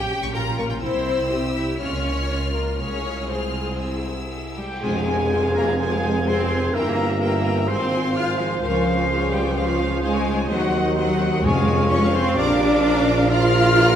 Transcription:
Already playing: french horn section C#4 G4, cello section G4, viola section G4, violin section G5
0.23 double bass section A#1, violin section C#6
0.34 double bass section A#1, viola section F4, cello section A#4, violin section G5 A#5
0.47 double bass section A#1, violin section A#5
0.58 double bass section A#1, cello section A#3, violin section A#4 C#6
0.70 double bass section A#1, violin section G5
0.81 double bass section C2, french horn section C4 E4, cello section C4, viola section E4, violin section C5 E6
1.30 viola section G4
1.56 cello section E4, violin section E5
1.79 double bass section C#2, french horn section A#3 F4, cello section C#4, viola section F4, violin section C#5 F6
2.28 viola section F4
2.54 cello section A#3, violin section A#4
2.78 double bass section C2, french horn section G#3, cello section C#4, viola section G#4, violin section C#5 F6
3.30 cello section C4, violin section C5 F6
3.81 french horn section G3 E4, violin section E6
4.57 cello section G3, clarinet G4, violin section G5, flute G5
4.82 tuba F1, double bass section F2, bassoon F3, cello section G#3, viola section F4 C5, french horn section G#4, clarinet G#4, violin section G#5, cor anglais G#5, flute G#5, tam-tam
4.96 viola section G#4, violin section F5
5.07 viola section F4 C5, violin section G#5
5.18 viola section G#4, violin section F5
5.31 viola section F4 C5, violin section G#5
5.43 viola section G#4, violin section F5
5.55 cello section A#3, viola section F4 C5, clarinet A#4, violin section G#5 A#5, flute A#5
5.67 viola section G#4, violin section F5
5.78 cello section G#3, french horn section F4, viola section F4 C5, clarinet G#4, violin section G#5, flute G#5
5.92 viola section G#4, violin section F5
6.04 viola section F4 C5, violin section G#5
6.15 viola section G#4, violin section F5
6.26 cello section C4, viola section F4 C5, french horn section G#4, clarinet C5, violin section G#5 C6, flute C6
6.39 viola section G#4, violin section F5
6.51 viola section F4 C5, violin section G#5
6.63 viola section G#4, violin section F5
6.72 double bass section G1, tuba G1, bassoon E3, cello section A#3, viola section E4 A#4, french horn section A#4, clarinet A#4, cor anglais E5, violin section G5 A#5, flute A#5
6.87 viola section G4, violin section E5
6.97 viola section E4 A#4, violin section G5
7.09 viola section G4, violin section E5
7.20 cello section A#3, viola section E4 A#4, french horn section G4, clarinet A#4, violin section G5 A#5, flute A#5
7.32 viola section G4, violin section E5
7.44 viola section E4 A#4, violin section G5
7.56 viola section G4, violin section E5
7.66 tuba G#1, double bass section G#1, bassoon F3, viola section C4 G#4, cello section C4, french horn section F4, cor anglais C5, clarinet C5, violin section G#5 C6, flute C6
7.80 viola section F4 C5, violin section F5
7.92 viola section C4 G#4, violin section G#5
8.04 viola section F4 C5, violin section F5
8.15 viola section C4 G#4, cello section F4, clarinet F5, violin section G#5 F6, flute F6
8.27 viola section F4 C5, violin section F5
8.37 cello section F3, viola section C4 G#4, clarinet F4, violin section F5 G#5, flute F5
8.50 viola section F4 C5, violin section F5
8.61 tuba C#2, double bass section C#2, cello section F3, clarinet F4, viola section G#4 C5, french horn section A#4, violin section F5, flute F5
8.73 viola section F4 C#5, violin section G#5
8.84 viola section G#4 C5, violin section F5
8.96 viola section F4 C#5, violin section G#5
9.08 viola section G#4 C5, french horn section G#4, violin section F5
9.19 viola section F4 C#5, violin section G#5
9.32 cello section G3, clarinet G4, viola section G#4 C5, violin section F5 G5, flute G5
9.43 viola section F4 C#5, violin section G#5
9.55 cello section F3, french horn section F4, clarinet F4, viola section G#4 C5, violin section F5, flute F5
9.66 viola section F4 C#5, violin section G#5
9.78 viola section G#4 C5, violin section F5
9.89 viola section F4 C#5, violin section G#5
10.02 cello section G#3, french horn section D#4, viola section G#4 C5, clarinet G#4, violin section F5 G#5, flute G#5
10.14 viola section F4 C#5, violin section G#5
10.25 viola section G#4 C5, violin section F5
10.36 viola section F4 C#5, violin section G#5
10.48 double bass section D#2, tuba D#2, bassoon D#3, cello section F#3, viola section C4 C5, clarinet F#4, violin section D#5 F#5, flute F#5
10.60 viola section D#4 D#5, violin section F#5
10.71 viola section C4 C5, violin section D#5
10.82 viola section D#4 D#5, violin section F#5
10.95 cello section F#3, viola section C4 C5, clarinet F#4, violin section D#5 F#5, flute F#5
11.06 viola section D#4 D#5, violin section F#5
11.18 viola section C4 C5, violin section D#5
11.30 viola section D#4 D#5, violin section F#5
11.41 tuba F1, double bass section F2, timpani F2, bassoon F3, cello section G#3, french horn section C#4, viola section F4 C#5, clarinet G#4, cor anglais C#5, violin section G#5, flute G#5
11.46 violin section G#5
11.54 viola section G#4 F5
11.58 violin section F5
11.66 viola section F4 C#5, violin section G#5
11.78 viola section G#4 F5, violin section F5
11.89 cello section C#4, viola section F4 C#5, french horn section F4, clarinet C#5, violin section G#5 C#6, flute C#6
12.02 viola section G#4 F5, violin section F5
12.12 cello section C4, viola section F4 C#5, clarinet C5, flute C6, violin section C6
12.17 violin section G#5
12.24 viola section G#4 F5, violin section F5
12.36 tuba A#1, double bass section A#1, bassoon F3, cello section D4, viola section F4 D5, french horn section G4, cor anglais A#4, clarinet D5, violin section A#5 D6, flute D6
12.48 viola section A#4 F5, violin section F5
12.58 viola section F4 D5, violin section A#5
12.70 viola section A#4 F5, violin section F5
12.81 viola section F4 D5, french horn section F4, violin section A#5
12.93 viola section A#4 F5, violin section F5
13.05 viola section F4 D5, violin section A#5
13.17 viola section A#4 F5, violin section F5
13.29 bassoon F3, viola section F4 D5, cello section F4, cor anglais A#4, clarinet F5, violin section A#5 F6, flute F6
13.41 viola section A#4 F5, violin section F5
13.53 viola section F4 D5, violin section A#5
13.65 viola section A#4 F5, violin section F5
13.77 bassoon E3, french horn section D4, viola section F4 D5, violin section A#5
13.89 viola section A#4 F5, violin section F5

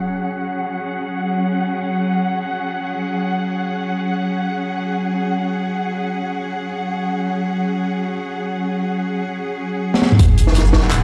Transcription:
Already playing: cello section F#3 C#4 G#4 F#5, synth texture F#5, sub drop
9.94 snare
10.02 snare
10.12 mid tom
10.19 sub bass F#1, cello section F#3, kick, closed hi-hat, sub drop
10.38 closed hi-hat
10.47 snare
10.52 snare, closed hi-hat
10.57 cello section C#4, snare
10.65 cello section F#5, shaker
10.73 kick, snare
10.84 clap
10.91 clap, closed hi-hat

